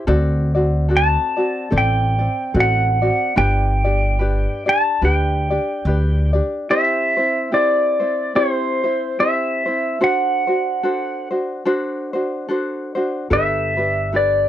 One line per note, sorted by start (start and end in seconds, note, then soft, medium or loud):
0.07 1.15 D2 medium
0.07 0.55 C4 medium
0.07 0.54 F#4 medium
0.07 0.55 A4 medium
0.07 0.53 D5 medium
0.55 0.88 C4 soft
0.55 0.89 F#4 soft
0.55 0.90 D5 medium
0.89 1.37 C4 medium
0.89 1.36 F#4 medium
0.89 1.37 A4 medium
0.89 1.35 D5 medium
0.97 1.78 A5 medium
1.37 1.70 C4 soft
1.37 1.70 F#4 soft
1.37 1.71 D5 soft
1.71 2.26 A1 medium
1.71 2.20 C4 medium
1.71 2.19 A4 medium
1.71 2.17 D5 medium
1.78 2.60 G5 medium
2.19 2.54 C4 soft
2.19 2.54 D5 soft
2.54 3.09 A1 medium
2.54 3.02 C4 medium
2.54 3.01 F#4 medium
2.54 3.01 A4 medium
2.54 3.01 D5 medium
2.60 3.37 F#5 medium
3.02 3.36 C4 soft
3.02 3.36 F#4 medium
3.02 3.36 D5 soft
3.36 4.45 G1 loud
3.36 3.85 D4 medium
3.36 3.84 G4 medium
3.36 3.85 B4 medium
3.36 3.83 D5 medium
3.36 4.72 G5 medium
3.84 4.19 D4 soft
3.84 4.20 G4 soft
3.84 4.20 D5 soft
4.19 4.66 D4 medium
4.19 4.65 G4 medium
4.19 4.67 B4 medium
4.19 4.65 D5 medium
4.66 5.02 D4 soft
4.66 5.03 G4 soft
4.66 5.02 D5 soft
4.66 5.01 A5 medium
5.02 5.56 D2 medium
5.02 5.51 D4 medium
5.02 5.50 G4 medium
5.02 5.50 B4 medium
5.02 5.49 D5 medium
5.02 6.31 G5 medium
5.50 5.86 D4 soft
5.50 5.86 G4 medium
5.50 5.86 D5 medium
5.85 6.39 D2 medium
5.85 6.34 D4 medium
5.85 6.33 G4 medium
5.85 6.34 B4 medium
5.85 6.32 D5 medium
6.33 6.70 D4 soft
6.33 6.69 G4 medium
6.33 6.68 D5 medium
6.70 7.17 C4 medium
6.70 7.17 E4 medium
6.70 7.17 G4 medium
6.70 7.15 C5 medium
6.70 7.55 E5 medium
7.17 7.51 C4 soft
7.17 7.52 E4 soft
7.17 7.52 C5 soft
7.52 8.00 C4 medium
7.52 7.99 E4 medium
7.52 7.99 G4 medium
7.52 7.98 C5 medium
7.52 8.36 D5 medium
8.00 8.34 C4 soft
8.00 8.35 E4 soft
8.00 8.35 C5 soft
8.35 8.83 C4 medium
8.35 8.83 E4 medium
8.35 8.82 G4 medium
8.35 9.20 C5 medium
8.35 8.82 C5 medium
8.84 9.18 C4 soft
8.84 9.19 E4 soft
8.84 9.18 C5 soft
9.19 9.66 C4 medium
9.19 9.66 E4 soft
9.19 9.66 G4 soft
9.19 9.65 C5 medium
9.19 10.03 E5 medium
9.66 10.01 C4 soft
9.66 10.01 E4 soft
9.66 10.00 C5 soft
10.01 10.47 D4 medium
10.01 10.47 F#4 medium
10.01 10.48 A4 medium
10.01 10.46 C5 medium
10.01 11.28 F#5 medium
10.47 10.82 D4 soft
10.47 10.83 F#4 medium
10.47 10.82 C5 medium
10.83 11.31 D4 medium
10.83 11.30 F#4 medium
10.83 11.31 A4 medium
10.83 11.29 C5 medium
11.31 11.65 D4 soft
11.31 11.65 F#4 medium
11.31 11.65 C5 soft
11.65 12.13 D4 medium
11.65 12.13 F#4 medium
11.65 12.13 A4 medium
11.65 12.12 C5 medium
12.13 12.48 D4 medium
12.13 12.49 F#4 soft
12.13 12.48 C5 medium
12.49 12.96 D4 medium
12.49 12.95 F#4 medium
12.49 12.96 A4 medium
12.49 12.94 C5 medium
12.95 13.30 D4 soft
12.95 13.31 F#4 medium
12.95 13.30 C5 medium
13.30 14.49 G1 medium
13.30 13.78 D4 medium
13.30 13.77 G4 medium
13.30 13.77 A4 medium
13.30 13.76 B4 medium
13.30 14.17 E5 medium
13.77 14.12 D4 soft
13.77 14.13 G4 soft
13.77 14.12 B4 soft
14.12 14.49 D4 medium
14.12 14.49 G4 medium
14.12 14.49 A4 medium
14.12 14.49 B4 medium
14.12 14.49 D5 medium